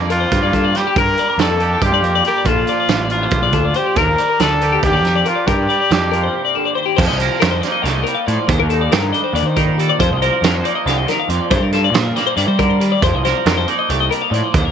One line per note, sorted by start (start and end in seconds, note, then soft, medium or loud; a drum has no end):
0.00 0.25 F2 medium
0.00 0.96 G2 medium
0.00 0.74 G3 medium
0.00 0.11 A#3 medium
0.00 0.96 G4 medium
0.00 0.11 D5 medium
0.10 0.33 A#3 soft
0.10 0.78 F4 medium
0.10 0.21 A#4 medium
0.10 closed hi-hat medium
0.20 0.42 C5 medium
0.32 0.41 G2 medium
0.32 0.55 A#3 medium
0.32 kick medium
0.32 closed hi-hat medium
0.42 0.52 G2 medium
0.42 0.53 D5 medium
0.53 0.71 G2 medium
0.53 1.39 A#3 medium
0.53 0.65 A4 medium
0.53 kick medium
0.53 closed hi-hat soft
0.65 0.76 D5 medium
0.75 0.94 G3 soft
0.75 0.97 G4 medium
0.75 0.86 C5 medium
0.75 snare soft
0.75 closed hi-hat medium
0.87 0.97 G4 medium
0.96 1.14 G2 medium
0.96 2.47 G2 medium
0.96 1.19 A#4 medium
0.96 1.41 A#4 medium
0.96 kick medium
0.96 closed hi-hat medium
1.18 2.25 G3 soft
1.18 1.29 D5 medium
1.18 closed hi-hat soft
1.30 1.40 A#4 medium
1.38 1.75 F2 medium
1.38 2.04 A#3 medium
1.38 1.83 A4 medium
1.38 1.50 D5 medium
1.38 snare medium
1.38 closed hi-hat medium
1.51 1.61 A4 medium
1.60 2.47 G4 medium
1.60 1.71 A#4 medium
1.60 closed hi-hat medium
1.71 1.93 G4 medium
1.81 1.91 G2 medium
1.81 2.25 G4 medium
1.81 kick medium
1.81 closed hi-hat medium
1.86 3.99 F4 medium
1.92 2.02 G2 medium
1.92 2.05 D5 soft
2.02 2.21 F2 medium
2.02 2.90 A#3 soft
2.02 2.15 A#4 medium
2.02 closed hi-hat soft
2.15 2.26 D5 medium
2.24 2.45 G3 medium
2.24 2.48 G4 medium
2.24 2.37 A#4 medium
2.24 closed hi-hat medium
2.38 2.48 D5 medium
2.44 2.64 A#1 medium
2.44 3.95 A#2 medium
2.44 3.10 F4 medium
2.44 2.69 A4 medium
2.44 kick medium
2.44 closed hi-hat medium
2.67 3.75 F3 medium
2.67 2.79 D5 medium
2.67 closed hi-hat soft
2.80 2.91 D5 medium
2.88 3.26 A1 medium
2.88 3.13 D4 medium
2.88 3.01 F5 medium
2.88 snare medium
2.88 closed hi-hat medium
3.01 3.12 D5 medium
3.10 3.33 D4 medium
3.10 3.78 F4 medium
3.10 3.23 A#4 medium
3.10 closed hi-hat soft
3.23 3.42 C5 medium
3.31 3.41 A#1 medium
3.31 3.54 D4 medium
3.31 kick loud
3.31 closed hi-hat medium
3.42 3.53 A#1 medium
3.42 3.54 D5 medium
3.52 3.72 D2 medium
3.52 3.99 D4 soft
3.52 3.65 A4 medium
3.52 kick medium
3.52 closed hi-hat medium
3.65 3.76 D5 medium
3.74 4.18 F3 medium
3.74 3.98 G4 medium
3.74 3.86 C5 medium
3.74 closed hi-hat medium
3.86 3.97 G4 medium
3.96 4.15 D#2 medium
3.96 4.82 D#3 medium
3.96 4.42 A#4 medium
3.96 4.19 A#4 medium
3.96 kick medium
3.96 closed hi-hat medium
4.18 5.25 G3 medium
4.18 4.29 D5 medium
4.18 closed hi-hat medium
4.29 4.40 A#4 medium
4.39 4.76 D2 medium
4.39 5.45 D4 medium
4.39 4.83 A4 medium
4.39 4.51 D5 medium
4.39 snare medium
4.39 closed hi-hat medium
4.51 4.62 A4 medium
4.61 6.99 G4 medium
4.61 4.72 A#4 medium
4.61 closed hi-hat medium
4.72 4.94 G4 medium
4.83 4.92 D#2 medium
4.83 5.04 D3 medium
4.83 5.29 G4 medium
4.83 kick medium
4.83 closed hi-hat medium
4.92 5.03 D#2 medium
4.92 5.04 D5 soft
5.03 5.22 F2 medium
5.03 5.26 D#3 medium
5.03 5.15 A#4 medium
5.03 snare soft
5.03 closed hi-hat soft
5.16 5.26 D5 medium
5.25 5.47 F3 medium
5.25 5.49 F4 medium
5.25 5.37 A#4 medium
5.25 closed hi-hat medium
5.36 5.47 D5 medium
5.47 5.66 G2 medium
5.47 6.98 G2 medium
5.47 6.77 G4 medium
5.47 5.69 A#4 medium
5.47 kick medium
5.47 closed hi-hat medium
5.69 6.96 G3 medium
5.69 5.79 D5 medium
5.69 closed hi-hat soft
5.80 5.91 D5 medium
5.91 6.27 F2 medium
5.91 7.62 A#3 medium
5.91 6.02 F5 medium
5.91 snare loud
5.91 closed hi-hat medium
6.02 6.13 D5 medium
6.12 6.97 F4 soft
6.12 6.23 A#4 medium
6.12 closed hi-hat medium
6.23 6.44 C5 medium
6.34 6.55 C3 medium
6.45 6.55 D5 medium
6.55 6.77 D3 soft
6.55 6.66 A4 medium
6.65 6.75 D5 medium
6.75 6.98 D#3 soft
6.75 6.87 C5 medium
6.86 6.97 G4 medium
6.96 7.07 F2 loud
6.96 7.85 F3 medium
6.96 7.07 C5 medium
6.96 kick loud
6.96 crash loud
7.07 7.28 C2 medium
7.07 7.18 D#5 medium
7.18 9.80 A#4 medium
7.18 7.40 C5 medium
7.18 closed hi-hat medium
7.40 7.60 F2 medium
7.40 7.52 A#4 medium
7.40 snare loud
7.40 closed hi-hat medium
7.51 7.61 C5 medium
7.61 9.14 A#3 medium
7.61 7.72 D5 medium
7.61 snare soft
7.61 closed hi-hat medium
7.65 8.72 D#4 soft
7.72 7.82 D#5 medium
7.82 8.02 C2 medium
7.82 8.06 A3 medium
7.82 7.93 F5 medium
7.82 snare soft
7.82 closed hi-hat medium
7.93 8.05 D#5 medium
8.04 8.16 A#4 medium
8.04 closed hi-hat medium
8.08 8.27 G3 medium
8.15 8.27 F5 medium
8.27 8.37 A2 medium
8.27 8.49 F3 soft
8.27 8.48 D5 medium
8.27 closed hi-hat medium
8.48 8.58 D#2 medium
8.48 9.98 D#3 medium
8.48 8.59 C5 medium
8.48 kick loud
8.48 closed hi-hat medium
8.60 8.87 D#2 medium
8.60 8.70 A#4 medium
8.70 9.56 D#4 medium
8.70 8.81 A4 medium
8.70 closed hi-hat medium
8.81 8.92 D5 medium
8.92 9.11 G2 medium
8.92 9.13 A#4 medium
8.92 snare loud
8.92 closed hi-hat medium
9.13 9.98 G3 medium
9.13 9.98 D4 medium
9.13 9.24 D#5 medium
9.13 closed hi-hat medium
9.24 9.35 C5 medium
9.33 9.42 D#2 medium
9.33 9.46 D5 medium
9.33 closed hi-hat medium
9.42 9.90 D#3 medium
9.42 9.57 C5 medium
9.56 9.97 A#2 medium
9.56 9.98 D#4 medium
9.56 9.78 A#4 medium
9.56 kick medium
9.56 closed hi-hat medium
9.78 9.89 G4 medium
9.78 9.98 A4 soft
9.78 closed hi-hat medium
9.89 10.00 D5 medium
9.99 10.09 F2 medium
9.99 11.29 F3 medium
9.99 10.11 C5 medium
9.99 kick medium
9.99 closed hi-hat medium
10.10 10.29 C2 medium
10.10 10.22 D#5 medium
10.22 12.40 A#4 medium
10.22 10.44 C5 medium
10.22 closed hi-hat medium
10.42 10.61 F2 medium
10.42 10.55 A#4 medium
10.42 snare loud
10.42 closed hi-hat loud
10.55 10.65 C5 medium
10.63 12.17 A#3 medium
10.63 11.48 D#4 medium
10.63 10.75 D5 medium
10.63 closed hi-hat medium
10.75 10.86 D#5 medium
10.86 11.04 C2 loud
10.86 11.07 D3 medium
10.86 10.98 F5 medium
10.86 snare soft
10.86 closed hi-hat loud
10.98 11.08 D#5 medium
11.08 11.30 D#3 medium
11.08 11.19 A#4 medium
11.08 snare soft
11.08 closed hi-hat medium
11.20 11.30 F5 medium
11.29 11.38 F2 medium
11.29 11.51 F3 medium
11.29 11.51 D5 medium
11.29 closed hi-hat medium
11.50 11.60 G2 medium
11.50 13.03 G2 medium
11.50 11.62 C5 medium
11.50 kick loud
11.50 closed hi-hat medium
11.60 11.89 G2 medium
11.60 11.73 A#4 medium
11.72 13.00 F4 medium
11.72 11.84 A4 medium
11.72 snare soft
11.72 closed hi-hat medium
11.84 11.95 D5 medium
11.92 12.11 A#2 medium
11.92 12.16 A#4 medium
11.92 snare loud
11.92 closed hi-hat medium
12.15 13.00 G3 medium
12.15 13.67 A#3 medium
12.15 12.26 D5 medium
12.15 snare soft
12.15 closed hi-hat medium
12.27 12.36 C5 medium
12.37 12.46 G2 medium
12.37 12.59 C3 medium
12.37 12.47 D5 medium
12.37 closed hi-hat medium
12.48 12.94 G3 medium
12.48 12.59 C5 medium
12.59 12.81 D3 medium
12.59 12.80 A#4 medium
12.59 kick medium
12.59 closed hi-hat medium
12.80 13.03 D#3 medium
12.80 12.92 G4 medium
12.80 closed hi-hat medium
12.92 13.03 D5 medium
13.02 13.12 F2 medium
13.02 13.89 F3 medium
13.02 13.15 C5 medium
13.02 kick loud
13.02 closed hi-hat medium
13.13 13.32 C2 medium
13.13 13.24 D#5 medium
13.25 14.72 A#4 medium
13.25 13.46 C5 medium
13.25 snare soft
13.25 closed hi-hat medium
13.46 13.64 F2 medium
13.46 13.57 A#4 medium
13.46 snare medium
13.46 closed hi-hat medium
13.57 13.68 C5 medium
13.67 14.72 A#3 medium
13.67 14.72 D#4 medium
13.67 13.78 D5 medium
13.67 closed hi-hat medium
13.79 13.90 D#5 medium
13.89 14.08 C2 medium
13.89 14.09 A3 medium
13.89 14.00 F5 medium
13.89 closed hi-hat medium
14.00 14.11 D#5 medium
14.10 14.30 G3 medium
14.10 14.22 A#4 medium
14.10 closed hi-hat medium
14.22 14.32 F5 medium
14.31 14.41 A2 medium
14.31 14.53 F3 medium
14.31 14.53 D5 medium
14.31 closed hi-hat medium
14.53 14.63 D#2 medium
14.53 14.72 D#3 medium
14.53 14.65 C5 medium
14.53 kick loud
14.53 closed hi-hat medium
14.64 14.72 D#2 medium
14.64 14.72 A#4 medium